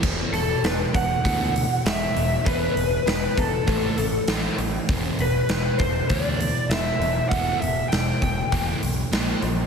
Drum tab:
CC |x-------|--------|--------|--------|
HH |-ooooooo|oooooooo|oooooooo|oooooooo|
SD |--o---o-|--o---o-|--o---o-|--o---o-|
BD |o--oo---|o--oo---|o--oo---|o--oo---|